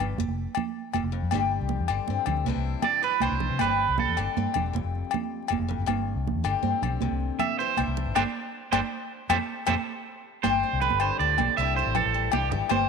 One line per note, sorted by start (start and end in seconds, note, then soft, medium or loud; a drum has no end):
0.00 0.17 G1 medium
0.00 0.18 G2 medium
0.00 low conga medium
0.00 low agogo medium
0.17 0.27 F1 loud
0.17 muted steel-string acoustic guitar stroke medium
0.17 high conga medium
0.17 low conga soft
0.28 0.46 F1 medium
0.48 low conga soft
0.55 high conga medium
0.55 low conga medium
0.55 low agogo medium
0.94 1.03 F1 medium
0.94 1.12 E2 medium
0.94 high conga medium
0.94 low agogo medium
1.03 1.21 F1 medium
1.12 1.32 F2 medium
1.23 1.31 F2 medium
1.31 1.59 G1 loud
1.31 2.44 G2 medium
1.31 1.89 D3 medium
1.31 2.48 G3 medium
1.31 2.10 C4 medium
1.31 high conga medium
1.31 low agogo medium
1.35 1.90 G4 medium
1.61 1.78 C2 medium
1.61 low conga soft
1.69 high conga medium
1.69 low conga medium
1.79 1.88 E2 medium
1.88 1.98 G1 loud
1.88 2.47 D3 medium
1.88 2.49 G4 medium
1.88 low agogo medium
1.98 low conga soft
2.08 2.17 G2 medium
2.08 2.49 C4 medium
2.08 high conga medium
2.08 low conga soft
2.26 2.45 D2 medium
2.26 low conga medium
2.26 low agogo medium
2.37 low conga soft
2.45 2.55 C2 loud
2.45 3.03 C3 medium
2.45 3.02 E3 medium
2.45 3.62 G3 medium
2.45 3.22 D4 medium
2.45 high conga medium
2.50 3.02 E4 medium
2.56 2.74 C2 medium
2.65 low conga soft
2.74 low conga soft
2.82 3.03 D5 loud
2.82 high conga loud
2.82 low conga loud
2.82 low agogo medium
2.93 low conga soft
3.03 3.58 E3 medium
3.03 3.60 E4 medium
3.03 3.22 B4 medium
3.12 low conga soft
3.20 3.31 C2 medium
3.20 3.58 D4 medium
3.20 3.58 C5 loud
3.20 high conga loud
3.20 low agogo medium
3.31 3.49 C2 medium
3.31 low conga soft
3.40 low conga loud
3.51 3.59 C3 medium
3.59 3.87 G1 medium
3.59 7.12 G3 medium
3.59 4.37 C4 medium
3.59 3.96 B4 medium
3.59 muted steel-string acoustic guitar stroke medium
3.59 high conga loud
3.59 low agogo medium
3.64 4.18 G4 medium
3.89 4.06 C2 medium
3.89 low conga soft
3.98 4.17 A4 medium
3.98 high conga loud
3.98 low conga loud
4.08 4.17 E2 medium
4.17 4.26 G1 loud
4.17 4.74 D3 medium
4.17 4.76 G4 medium
4.17 low agogo medium
4.27 low conga soft
4.37 4.45 G2 loud
4.37 6.47 C4 medium
4.37 high conga loud
4.37 low conga soft
4.54 4.73 E1 loud
4.54 low conga medium
4.54 low agogo medium
4.66 low conga soft
4.73 4.83 F1 loud
4.73 5.49 F2 medium
4.73 high conga loud
4.84 5.02 F1 medium
4.95 low conga soft
5.05 low conga soft
5.11 high conga medium
5.11 low conga medium
5.11 low agogo medium
5.24 low conga soft
5.43 low conga soft
5.48 5.58 F1 medium
5.48 5.68 E2 medium
5.48 high conga loud
5.48 low agogo medium
5.59 5.77 F1 medium
5.59 low conga soft
5.68 5.86 F2 medium
5.68 low conga medium
5.78 5.87 F#1 medium
5.86 6.14 G1 loud
5.86 6.99 G2 medium
5.86 high conga medium
5.86 low agogo medium
6.16 6.34 C2 medium
6.16 low conga soft
6.27 high conga medium
6.27 low conga medium
6.35 6.43 E2 medium
6.44 6.53 G1 loud
6.44 7.59 D3 medium
6.44 7.60 G4 medium
6.44 low agogo medium
6.55 low conga soft
6.63 6.72 G2 loud
6.63 7.78 C4 medium
6.63 high conga medium
6.63 low conga soft
6.82 7.00 B1 loud
6.82 low conga medium
6.82 low agogo medium
6.92 low conga soft
7.01 7.10 C2 loud
7.01 7.59 C3 medium
7.01 high conga medium
7.11 7.29 C2 medium
7.20 low conga soft
7.30 low conga soft
7.39 7.58 E5 medium
7.39 high conga medium
7.39 low conga medium
7.39 low agogo medium
7.49 low conga soft
7.59 8.14 E3 medium
7.59 8.17 E4 medium
7.59 7.77 C5 medium
7.67 low conga soft
7.77 7.87 C2 medium
7.77 8.14 D4 medium
7.77 high conga medium
7.77 low agogo medium
7.87 8.05 C2 medium
7.87 low conga soft
7.97 low conga loud
8.07 8.15 G#1 medium
8.15 8.23 G1 medium
8.15 8.22 C3 loud
8.15 8.22 D3 medium
8.15 8.22 G3 medium
8.15 8.22 D4 loud
8.15 8.22 G4 loud
8.15 8.22 C5 medium
8.15 high conga loud
8.15 low agogo loud
8.72 8.80 G1 medium
8.72 8.80 C3 medium
8.72 8.79 D3 medium
8.72 8.79 G3 medium
8.72 8.78 D4 medium
8.72 8.78 G4 medium
8.72 8.79 C5 medium
8.72 high conga medium
8.72 low agogo loud
9.29 9.37 F2 loud
9.29 9.36 A2 medium
9.29 9.36 C3 medium
9.29 9.36 F3 medium
9.29 9.36 G4 loud
9.29 9.36 A4 medium
9.29 9.36 C5 medium
9.29 high conga loud
9.29 low agogo loud
9.67 9.75 F2 medium
9.67 9.73 A2 medium
9.67 9.74 C3 medium
9.67 9.73 F3 medium
9.67 9.74 G4 medium
9.67 9.74 A4 medium
9.67 9.74 C5 medium
9.67 high conga loud
9.67 low agogo loud
10.43 10.62 G1 medium
10.43 11.00 G2 medium
10.43 11.59 G3 medium
10.43 10.63 C4 medium
10.43 11.60 G4 medium
10.43 10.79 C5 loud
10.43 high conga medium
10.43 low conga soft
10.43 low agogo medium
10.63 11.60 C4 medium
10.73 10.90 C2 medium
10.81 11.95 D3 medium
10.81 10.99 B4 medium
10.81 low conga medium
10.90 11.09 G1 loud
10.90 high conga medium
11.00 11.20 G2 medium
11.00 11.19 C5 medium
11.00 low agogo medium
11.19 11.37 D2 medium
11.19 11.38 A2 medium
11.19 11.55 D5 medium
11.19 low conga soft
11.38 11.47 B1 medium
11.38 11.58 B2 medium
11.38 high conga medium
11.38 low conga medium
11.38 low agogo medium
11.49 low conga soft
11.57 11.84 C2 loud
11.57 11.95 C3 medium
11.57 12.14 G3 medium
11.57 11.77 D4 medium
11.57 12.31 E4 medium
11.57 11.75 E5 medium
11.76 11.94 C5 medium
11.76 muted steel-string acoustic guitar stroke medium
11.86 12.04 A1 medium
11.86 low conga soft
11.95 12.68 E3 medium
11.95 12.31 A4 medium
11.95 low conga loud
11.95 low agogo medium
12.05 12.31 A1 loud
12.14 12.51 G3 medium
12.25 low conga soft
12.32 12.53 C2 medium
12.32 12.68 G2 medium
12.32 12.71 E4 medium
12.32 12.50 G4 medium
12.32 high conga loud
12.32 low agogo medium
12.43 low conga soft
12.51 12.60 G#1 loud
12.51 12.69 G3 medium
12.51 muted clean electric guitar stroke medium
12.51 low conga loud
12.62 low conga soft
12.69 12.88 G1 loud
12.69 12.89 G2 medium
12.69 12.89 G3 medium
12.69 12.89 C4 medium
12.69 12.89 G4 medium
12.69 12.89 C5 loud
12.69 high conga loud
12.69 low conga soft
12.69 low agogo medium